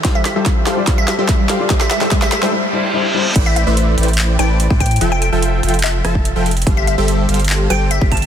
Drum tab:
CC |--------------------------------|--------------------------------|x-------------------------------|--------------------------------|
HH |x---x---x---x---x---x---x---x---|x---x---x---x-------------------|x---x---x---xxxxx---x---x---xxxx|x---x---x---xxxxx---x---x---xxxx|
CP |--------------------------------|--------------------------------|----------------x---------------|----------------x---------------|
SD |o---o---o---o---o---o---o---o---|o-o-o-o-o-o-o-o-----------------|--------------------------------|--------------------r-----------|
BD |o-------o-------o-------o-------|o-------o-----------------------|o-------------------------o-o---|----------------------o---------|

CC |--------------------------------|
HH |x---x---x---xxxxx---x---x---xxx-|
CP |----------------x---------------|
SD |--------------------------------|
BD |o-------------------------o-o---|